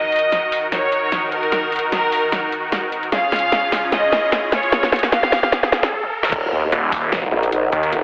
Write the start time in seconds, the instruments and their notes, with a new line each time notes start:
Already playing: supersaw synth D#3 D#4 F#4 A#4, violin section D#5, riser
0.12 closed hi-hat
0.16 closed hi-hat
0.19 closed hi-hat
0.32 snare, closed hi-hat
0.52 open hi-hat
0.72 violin section C#5, snare, closed hi-hat
0.92 closed hi-hat
1.12 snare, closed hi-hat
1.32 violin section A#4, closed hi-hat
1.43 closed hi-hat
1.52 snare, closed hi-hat
1.72 closed hi-hat
1.76 closed hi-hat
1.79 closed hi-hat
1.92 violin section A#4, snare, closed hi-hat
2.12 open hi-hat
2.32 snare, closed hi-hat
2.52 closed hi-hat
2.72 snare, closed hi-hat
2.92 closed hi-hat
3.03 closed hi-hat
3.12 supersaw synth C#3 C#4 F4 G#4, violin section F5, snare, closed hi-hat
3.32 snare, closed hi-hat
3.36 closed hi-hat
3.39 closed hi-hat
3.52 snare, closed hi-hat
3.72 snare, open hi-hat
3.92 violin section D#5, snare, closed hi-hat
4.12 snare, closed hi-hat
4.32 snare, closed hi-hat
4.52 violin section C#5, snare, closed hi-hat
4.63 closed hi-hat
4.72 snare, closed hi-hat
4.83 snare
4.92 snare, closed hi-hat
4.96 closed hi-hat
4.99 closed hi-hat
5.03 snare
5.12 violin section F5, snare, closed hi-hat
5.23 snare
5.32 snare, open hi-hat
5.43 snare
5.52 snare, closed hi-hat
5.63 snare
5.72 snare, closed hi-hat
5.83 snare
5.92 high tom
6.03 high tom
6.23 snare
6.32 wobble bass D#1, supersaw synth D#4 D#5 F#5 A#5, kick, closed hi-hat, crash
6.52 wobble bass D#2
6.72 detuned saw bass D#1, closed hi-hat
6.92 kick, open hi-hat
7.12 snare, closed hi-hat
7.32 wobble bass A#1
7.43 closed hi-hat
7.52 closed hi-hat
7.72 detuned saw bass D#2, closed hi-hat
7.83 closed hi-hat
7.92 wobble bass F1, closed hi-hat